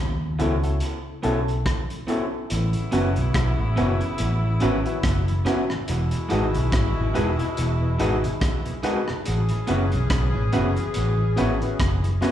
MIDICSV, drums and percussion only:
0, 0, Header, 1, 2, 480
1, 0, Start_track
1, 0, Tempo, 845070
1, 1422, Time_signature, 4, 2, 24, 8
1, 6995, End_track
2, 0, Start_track
2, 0, Title_t, "Drums"
2, 224, Note_on_c, 9, 42, 70
2, 281, Note_off_c, 9, 42, 0
2, 360, Note_on_c, 9, 42, 46
2, 417, Note_off_c, 9, 42, 0
2, 456, Note_on_c, 9, 42, 91
2, 513, Note_off_c, 9, 42, 0
2, 701, Note_on_c, 9, 42, 65
2, 757, Note_off_c, 9, 42, 0
2, 842, Note_on_c, 9, 42, 38
2, 899, Note_off_c, 9, 42, 0
2, 942, Note_on_c, 9, 36, 115
2, 944, Note_on_c, 9, 37, 106
2, 948, Note_on_c, 9, 42, 84
2, 998, Note_off_c, 9, 36, 0
2, 1001, Note_off_c, 9, 37, 0
2, 1004, Note_off_c, 9, 42, 0
2, 1080, Note_on_c, 9, 42, 50
2, 1137, Note_off_c, 9, 42, 0
2, 1182, Note_on_c, 9, 42, 58
2, 1239, Note_off_c, 9, 42, 0
2, 1420, Note_on_c, 9, 42, 99
2, 1477, Note_off_c, 9, 42, 0
2, 1551, Note_on_c, 9, 42, 52
2, 1608, Note_off_c, 9, 42, 0
2, 1659, Note_on_c, 9, 42, 70
2, 1716, Note_off_c, 9, 42, 0
2, 1796, Note_on_c, 9, 42, 49
2, 1852, Note_off_c, 9, 42, 0
2, 1900, Note_on_c, 9, 36, 122
2, 1902, Note_on_c, 9, 42, 96
2, 1904, Note_on_c, 9, 37, 113
2, 1956, Note_off_c, 9, 36, 0
2, 1959, Note_off_c, 9, 42, 0
2, 1961, Note_off_c, 9, 37, 0
2, 2142, Note_on_c, 9, 42, 71
2, 2199, Note_off_c, 9, 42, 0
2, 2276, Note_on_c, 9, 42, 43
2, 2333, Note_off_c, 9, 42, 0
2, 2374, Note_on_c, 9, 42, 99
2, 2431, Note_off_c, 9, 42, 0
2, 2614, Note_on_c, 9, 42, 74
2, 2671, Note_off_c, 9, 42, 0
2, 2758, Note_on_c, 9, 42, 45
2, 2815, Note_off_c, 9, 42, 0
2, 2859, Note_on_c, 9, 36, 116
2, 2861, Note_on_c, 9, 37, 122
2, 2864, Note_on_c, 9, 42, 104
2, 2916, Note_off_c, 9, 36, 0
2, 2917, Note_off_c, 9, 37, 0
2, 2921, Note_off_c, 9, 42, 0
2, 2999, Note_on_c, 9, 42, 47
2, 3056, Note_off_c, 9, 42, 0
2, 3100, Note_on_c, 9, 42, 64
2, 3106, Note_on_c, 9, 37, 71
2, 3157, Note_off_c, 9, 42, 0
2, 3163, Note_off_c, 9, 37, 0
2, 3237, Note_on_c, 9, 37, 62
2, 3294, Note_off_c, 9, 37, 0
2, 3339, Note_on_c, 9, 42, 100
2, 3395, Note_off_c, 9, 42, 0
2, 3472, Note_on_c, 9, 42, 57
2, 3528, Note_off_c, 9, 42, 0
2, 3578, Note_on_c, 9, 42, 74
2, 3634, Note_off_c, 9, 42, 0
2, 3718, Note_on_c, 9, 42, 52
2, 3774, Note_off_c, 9, 42, 0
2, 3819, Note_on_c, 9, 36, 119
2, 3822, Note_on_c, 9, 42, 97
2, 3824, Note_on_c, 9, 37, 112
2, 3876, Note_off_c, 9, 36, 0
2, 3879, Note_off_c, 9, 42, 0
2, 3881, Note_off_c, 9, 37, 0
2, 4063, Note_on_c, 9, 42, 64
2, 4119, Note_off_c, 9, 42, 0
2, 4199, Note_on_c, 9, 42, 47
2, 4256, Note_off_c, 9, 42, 0
2, 4301, Note_on_c, 9, 42, 95
2, 4357, Note_off_c, 9, 42, 0
2, 4542, Note_on_c, 9, 42, 77
2, 4598, Note_off_c, 9, 42, 0
2, 4680, Note_on_c, 9, 42, 49
2, 4737, Note_off_c, 9, 42, 0
2, 4779, Note_on_c, 9, 36, 127
2, 4781, Note_on_c, 9, 37, 115
2, 4784, Note_on_c, 9, 42, 95
2, 4836, Note_off_c, 9, 36, 0
2, 4838, Note_off_c, 9, 37, 0
2, 4841, Note_off_c, 9, 42, 0
2, 4916, Note_on_c, 9, 42, 48
2, 4973, Note_off_c, 9, 42, 0
2, 5017, Note_on_c, 9, 42, 71
2, 5074, Note_off_c, 9, 42, 0
2, 5156, Note_on_c, 9, 37, 66
2, 5213, Note_off_c, 9, 37, 0
2, 5257, Note_on_c, 9, 42, 93
2, 5314, Note_off_c, 9, 42, 0
2, 5388, Note_on_c, 9, 42, 54
2, 5445, Note_off_c, 9, 42, 0
2, 5495, Note_on_c, 9, 42, 68
2, 5551, Note_off_c, 9, 42, 0
2, 5633, Note_on_c, 9, 42, 53
2, 5690, Note_off_c, 9, 42, 0
2, 5736, Note_on_c, 9, 42, 105
2, 5737, Note_on_c, 9, 36, 122
2, 5738, Note_on_c, 9, 37, 120
2, 5793, Note_off_c, 9, 42, 0
2, 5794, Note_off_c, 9, 36, 0
2, 5795, Note_off_c, 9, 37, 0
2, 5978, Note_on_c, 9, 42, 75
2, 6035, Note_off_c, 9, 42, 0
2, 6114, Note_on_c, 9, 42, 48
2, 6171, Note_off_c, 9, 42, 0
2, 6214, Note_on_c, 9, 42, 94
2, 6271, Note_off_c, 9, 42, 0
2, 6460, Note_on_c, 9, 42, 76
2, 6517, Note_off_c, 9, 42, 0
2, 6598, Note_on_c, 9, 42, 44
2, 6655, Note_off_c, 9, 42, 0
2, 6700, Note_on_c, 9, 36, 120
2, 6703, Note_on_c, 9, 37, 125
2, 6707, Note_on_c, 9, 42, 97
2, 6757, Note_off_c, 9, 36, 0
2, 6760, Note_off_c, 9, 37, 0
2, 6763, Note_off_c, 9, 42, 0
2, 6839, Note_on_c, 9, 42, 51
2, 6896, Note_off_c, 9, 42, 0
2, 6942, Note_on_c, 9, 42, 67
2, 6947, Note_on_c, 9, 37, 61
2, 6995, Note_off_c, 9, 37, 0
2, 6995, Note_off_c, 9, 42, 0
2, 6995, End_track
0, 0, End_of_file